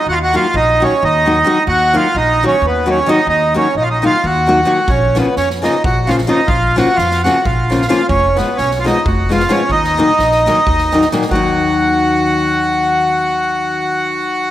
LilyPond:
<<
  \new Staff \with { instrumentName = "Accordion" } { \time 7/8 \key ees \minor \tempo 4 = 130 ges'32 f'32 ges'16 f'8 ees'8 des'8 ees'4. | ges'8 f'8 ees'8 des'8 ces'8 des'8 ees'8 | ees'8 des'8 ees'32 f'32 ees'16 f'8 ges'4. | des'8 ces'8 des'8 ees'8 ges'8 f'8 ees'8 |
f'8 ges'8 f'8 ges'8 f'4 f'8 | des'8 ces'8 des'16. f'32 ees'8 ges'8 f'8 des'8 | ees'2. r8 | ges'2.~ ges'8~ |
ges'2.~ ges'8 | }
  \new Staff \with { instrumentName = "Nylon-string guitar" } { \time 7/8 \key ees \minor r8 <ees ges bes ees' ges'>8 r8 <ees ges bes ees' ges'>8 r8 <ees ges bes ees' ges'>8 <ees ges bes ees' ges'>8 | r8 <ees ges bes ees' ges'>8 r8 <ees ges bes ees' ges'>8 r8 <ees ges bes ees' ges'>8 <ees ges bes ees' ges'>8 | r8 <ees ges bes ees' ges'>8 r8 <ees ges bes ees' ges'>8 r8 <ees ges bes ees' ges'>8 <ees ges bes ees' ges'>8 | r8 <des f bes des' f'>8 r8 <des f bes des' f'>8 r8 <des f bes des' f'>8 <des f bes des' f'>8 |
r8 <des f bes des' f'>8 r8 <des f bes des' f'>8 r8 <des f bes des' f'>8 <des f bes des' f'>8 | r8 <ces f aes ces' f'>8 r8 <ces f aes ces' f'>8 r8 <ces f aes ces' f'>8 <ces f aes ces' f'>8 | r8 <bes, ees ges bes ees'>8 r8 <bes, ees ges bes ees'>8 r8 <bes, ees ges bes ees'>8 <bes, ees ges bes ees'>8 | <ees ges bes ees'>2.~ <ees ges bes ees'>8~ |
<ees ges bes ees'>2.~ <ees ges bes ees'>8 | }
  \new Staff \with { instrumentName = "Upright bass" } { \clef bass \time 7/8 \key ees \minor ees,4 bes,,4 ees,4. | ees,4 bes,,4 ees,4. | ees,4 bes,,4 ees,4. | bes,,4 f,4 bes,,4. |
bes,,4 f,4 bes,,4. | f,,4 ces,4 f,,4. | ees,4 bes,,4 ees,4. | ees,2.~ ees,8~ |
ees,2.~ ees,8 | }
  \new DrumStaff \with { instrumentName = "Drums" } \drummode { \time 7/8 r4 r4 r4. | r4 r4 r4. | r4 r4 r4. | bd8 sn8 sn16 sn16 sn8 bd8 sn16 sn8. |
bd8 sn8 sn16 sn16 sn8 bd8 sn16 sn16 sn8 | bd8 sn8 sn16 sn16 sn8 bd8 sn16 sn16 sn8 | bd16 sn8. sn16 sn16 sn8 bd16 sn16 sn16 sn16 sn16 sn16 | bd4 r4 r4. |
r4 r4 r4. | }
>>